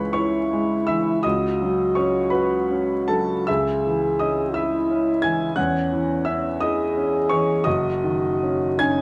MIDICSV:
0, 0, Header, 1, 3, 480
1, 0, Start_track
1, 0, Key_signature, 4, "minor"
1, 0, Tempo, 728155
1, 818, Time_signature, 6, 3, 24, 8
1, 1776, Tempo, 784314
1, 2256, Tempo, 696864
1, 5136, Tempo, 757576
1, 5995, End_track
2, 0, Start_track
2, 0, Title_t, "Grand piano"
2, 0, Program_c, 0, 0
2, 0, Control_c, 0, 64, 127
2, 0, Note_on_c, 0, 37, 42
2, 0, Note_on_c, 0, 52, 36
2, 0, Note_on_c, 0, 56, 40
2, 0, Note_on_c, 0, 71, 49
2, 0, Note_on_c, 0, 73, 52
2, 0, Note_on_c, 0, 83, 66
2, 0, Note_on_c, 0, 85, 67
2, 81, Note_off_c, 0, 71, 0
2, 86, Note_off_c, 0, 85, 0
2, 86, Note_on_c, 0, 85, 67
2, 92, Note_off_c, 0, 83, 0
2, 93, Note_off_c, 0, 73, 0
2, 93, Note_on_c, 0, 73, 51
2, 102, Note_on_c, 0, 64, 40
2, 249, Note_off_c, 0, 56, 0
2, 348, Note_on_c, 0, 56, 39
2, 489, Note_off_c, 0, 64, 0
2, 554, Note_off_c, 0, 73, 0
2, 571, Note_on_c, 0, 88, 64
2, 576, Note_off_c, 0, 85, 0
2, 580, Note_on_c, 0, 76, 55
2, 587, Note_off_c, 0, 52, 0
2, 587, Note_on_c, 0, 52, 39
2, 727, Note_off_c, 0, 56, 0
2, 795, Note_off_c, 0, 37, 0
2, 800, Note_off_c, 0, 76, 0
2, 811, Note_on_c, 0, 87, 68
2, 813, Note_off_c, 0, 88, 0
2, 818, Note_on_c, 0, 75, 51
2, 820, Note_off_c, 0, 52, 0
2, 829, Note_on_c, 0, 37, 46
2, 830, Control_c, 0, 64, 0
2, 953, Control_c, 0, 64, 127
2, 1068, Note_on_c, 0, 54, 38
2, 1268, Note_off_c, 0, 75, 0
2, 1287, Note_on_c, 0, 85, 57
2, 1291, Note_off_c, 0, 87, 0
2, 1295, Note_on_c, 0, 73, 49
2, 1303, Note_on_c, 0, 61, 38
2, 1442, Note_off_c, 0, 54, 0
2, 1515, Note_off_c, 0, 73, 0
2, 1518, Note_on_c, 0, 83, 63
2, 1526, Note_on_c, 0, 71, 50
2, 1528, Note_off_c, 0, 85, 0
2, 1532, Note_on_c, 0, 66, 39
2, 1680, Note_off_c, 0, 61, 0
2, 1786, Note_on_c, 0, 61, 41
2, 1920, Note_off_c, 0, 66, 0
2, 1990, Note_off_c, 0, 71, 0
2, 2010, Note_on_c, 0, 81, 65
2, 2011, Note_off_c, 0, 83, 0
2, 2016, Note_on_c, 0, 69, 50
2, 2026, Note_on_c, 0, 54, 37
2, 2167, Note_off_c, 0, 61, 0
2, 2236, Note_off_c, 0, 37, 0
2, 2238, Note_off_c, 0, 69, 0
2, 2250, Note_on_c, 0, 88, 68
2, 2252, Note_off_c, 0, 81, 0
2, 2258, Note_on_c, 0, 76, 53
2, 2261, Note_off_c, 0, 54, 0
2, 2266, Note_on_c, 0, 37, 46
2, 2269, Control_c, 0, 64, 0
2, 2373, Control_c, 0, 64, 127
2, 2525, Note_on_c, 0, 52, 38
2, 2724, Note_off_c, 0, 76, 0
2, 2747, Note_off_c, 0, 88, 0
2, 2749, Note_on_c, 0, 87, 55
2, 2756, Note_on_c, 0, 75, 45
2, 2765, Note_on_c, 0, 61, 32
2, 2903, Note_off_c, 0, 52, 0
2, 2977, Note_off_c, 0, 75, 0
2, 2988, Note_on_c, 0, 88, 63
2, 2990, Note_off_c, 0, 87, 0
2, 2999, Note_on_c, 0, 76, 49
2, 3008, Note_on_c, 0, 64, 42
2, 3141, Note_off_c, 0, 61, 0
2, 3239, Note_on_c, 0, 61, 39
2, 3378, Note_off_c, 0, 64, 0
2, 3440, Note_off_c, 0, 76, 0
2, 3456, Note_on_c, 0, 92, 70
2, 3461, Note_off_c, 0, 88, 0
2, 3469, Note_on_c, 0, 80, 56
2, 3476, Note_on_c, 0, 52, 39
2, 3609, Note_off_c, 0, 61, 0
2, 3675, Note_off_c, 0, 37, 0
2, 3685, Note_off_c, 0, 80, 0
2, 3688, Note_on_c, 0, 90, 69
2, 3694, Note_off_c, 0, 92, 0
2, 3695, Note_on_c, 0, 78, 55
2, 3703, Note_on_c, 0, 40, 44
2, 3704, Note_off_c, 0, 52, 0
2, 3711, Control_c, 0, 64, 0
2, 3816, Control_c, 0, 64, 127
2, 3941, Note_on_c, 0, 52, 42
2, 4147, Note_off_c, 0, 78, 0
2, 4164, Note_on_c, 0, 88, 62
2, 4170, Note_on_c, 0, 76, 50
2, 4171, Note_off_c, 0, 90, 0
2, 4181, Note_on_c, 0, 61, 34
2, 4324, Note_off_c, 0, 52, 0
2, 4397, Note_off_c, 0, 76, 0
2, 4409, Note_on_c, 0, 87, 71
2, 4411, Note_off_c, 0, 88, 0
2, 4420, Note_on_c, 0, 75, 50
2, 4428, Note_on_c, 0, 64, 39
2, 4564, Note_off_c, 0, 61, 0
2, 4661, Note_on_c, 0, 61, 39
2, 4804, Note_off_c, 0, 64, 0
2, 4868, Note_off_c, 0, 75, 0
2, 4885, Note_on_c, 0, 85, 70
2, 4890, Note_off_c, 0, 87, 0
2, 4893, Note_on_c, 0, 73, 53
2, 4898, Note_on_c, 0, 52, 38
2, 5041, Note_off_c, 0, 61, 0
2, 5112, Note_off_c, 0, 40, 0
2, 5119, Note_off_c, 0, 73, 0
2, 5122, Note_on_c, 0, 87, 70
2, 5130, Note_on_c, 0, 75, 51
2, 5132, Note_off_c, 0, 85, 0
2, 5139, Note_off_c, 0, 52, 0
2, 5140, Note_on_c, 0, 30, 50
2, 5147, Control_c, 0, 64, 0
2, 5273, Control_c, 0, 64, 127
2, 5376, Note_on_c, 0, 51, 39
2, 5625, Note_on_c, 0, 61, 37
2, 5768, Note_off_c, 0, 51, 0
2, 5833, Note_off_c, 0, 75, 0
2, 5851, Note_on_c, 0, 92, 81
2, 5855, Note_off_c, 0, 87, 0
2, 5859, Note_on_c, 0, 80, 65
2, 5864, Note_on_c, 0, 63, 43
2, 5995, Note_off_c, 0, 30, 0
2, 5995, Note_off_c, 0, 61, 0
2, 5995, Note_off_c, 0, 63, 0
2, 5995, Note_off_c, 0, 80, 0
2, 5995, Note_off_c, 0, 92, 0
2, 5995, End_track
3, 0, Start_track
3, 0, Title_t, "French horn"
3, 0, Program_c, 1, 60
3, 101, Note_on_c, 1, 64, 62
3, 793, Note_off_c, 1, 64, 0
3, 811, Note_on_c, 1, 66, 61
3, 2228, Note_off_c, 1, 66, 0
3, 2252, Note_on_c, 1, 68, 60
3, 2989, Note_on_c, 1, 64, 56
3, 2999, Note_off_c, 1, 68, 0
3, 3687, Note_off_c, 1, 64, 0
3, 3691, Note_on_c, 1, 61, 53
3, 4217, Note_off_c, 1, 61, 0
3, 4431, Note_on_c, 1, 68, 68
3, 5131, Note_on_c, 1, 66, 61
3, 5141, Note_off_c, 1, 68, 0
3, 5861, Note_on_c, 1, 61, 63
3, 5870, Note_off_c, 1, 66, 0
3, 5995, Note_off_c, 1, 61, 0
3, 5995, End_track
0, 0, End_of_file